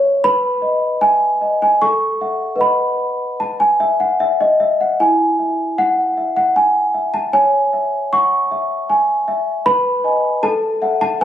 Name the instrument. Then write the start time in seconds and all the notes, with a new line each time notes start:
celesta
Already playing: C#4 C#5 D#5 E5 C#6
0.24 B4 B5
0.62 D#5
1.01 E5 G#5
1.41 D#5
1.62 G#5
1.82 A4 C#6
2.21 E5 F#5
2.56 B4 D#5 F#5
2.61 B5
3.40 A5
3.60 G#5
3.80 E5
4.00 F#5
4.20 E5
4.40 D#5
4.60 E5
4.81 F#5
5.00 E4 G#5
5.39 E5
5.78 F#5
6.17 E5
6.37 F#5
6.56 G#5
6.94 E5
7.14 A5
7.33 C#5 G#5
7.73 E5
8.13 F#5 C#6
8.51 E5
8.90 G#5
9.28 E5
9.66 B4 B5
10.04 D#5 G#5
10.43 A4 A5
10.82 E5 F#5
11.01 A5